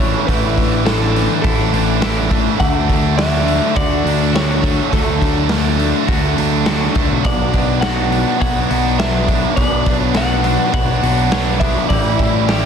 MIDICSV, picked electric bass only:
0, 0, Header, 1, 2, 480
1, 0, Start_track
1, 0, Key_signature, 2, "major"
1, 0, Tempo, 580833
1, 231, Time_signature, 4, 2, 24, 8
1, 10457, End_track
2, 0, Start_track
2, 0, Title_t, "Picked electric bass"
2, 0, Program_c, 0, 34
2, 0, Note_on_c, 0, 33, 89
2, 129, Note_off_c, 0, 33, 0
2, 234, Note_on_c, 0, 33, 79
2, 1048, Note_off_c, 0, 33, 0
2, 1200, Note_on_c, 0, 33, 77
2, 1399, Note_off_c, 0, 33, 0
2, 1424, Note_on_c, 0, 33, 91
2, 2038, Note_off_c, 0, 33, 0
2, 2155, Note_on_c, 0, 38, 91
2, 2969, Note_off_c, 0, 38, 0
2, 3113, Note_on_c, 0, 38, 80
2, 3315, Note_off_c, 0, 38, 0
2, 3344, Note_on_c, 0, 38, 89
2, 3958, Note_off_c, 0, 38, 0
2, 4076, Note_on_c, 0, 38, 99
2, 4890, Note_off_c, 0, 38, 0
2, 5031, Note_on_c, 0, 38, 71
2, 5234, Note_off_c, 0, 38, 0
2, 5270, Note_on_c, 0, 38, 86
2, 5678, Note_off_c, 0, 38, 0
2, 5752, Note_on_c, 0, 37, 68
2, 5858, Note_off_c, 0, 37, 0
2, 5880, Note_on_c, 0, 35, 75
2, 5983, Note_off_c, 0, 35, 0
2, 5989, Note_on_c, 0, 35, 97
2, 6807, Note_off_c, 0, 35, 0
2, 6952, Note_on_c, 0, 35, 75
2, 7156, Note_off_c, 0, 35, 0
2, 7194, Note_on_c, 0, 35, 91
2, 7806, Note_off_c, 0, 35, 0
2, 7912, Note_on_c, 0, 35, 88
2, 8730, Note_off_c, 0, 35, 0
2, 8874, Note_on_c, 0, 35, 72
2, 9078, Note_off_c, 0, 35, 0
2, 9110, Note_on_c, 0, 35, 82
2, 9725, Note_off_c, 0, 35, 0
2, 9839, Note_on_c, 0, 33, 94
2, 10457, Note_off_c, 0, 33, 0
2, 10457, End_track
0, 0, End_of_file